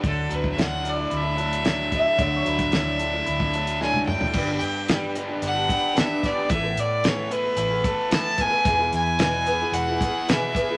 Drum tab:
CC |----------------|----------------|x---------------|----------------|
HH |x-x-x-x-x-xxx-x-|x-xxx-x-x-xx----|--x-x-x-x-x-x-x-|x-x-x-x-x-x-x-x-|
SD |----o-------o---|----o-------o---|----o-------o-o-|----o-------o---|
T1 |----------------|-------------o--|----------------|----------------|
T2 |----------------|--------------o-|----------------|----------------|
FT |----------------|---------------o|----------------|----------------|
BD |o--o----------o-|o--o-----o------|o---------o---o-|o---------o---o-|

CC |----------------|
HH |x-x-x-x-x-x-x-x-|
SD |----o-------o---|
T1 |----------------|
T2 |----------------|
FT |----------------|
BD |o---------o---o-|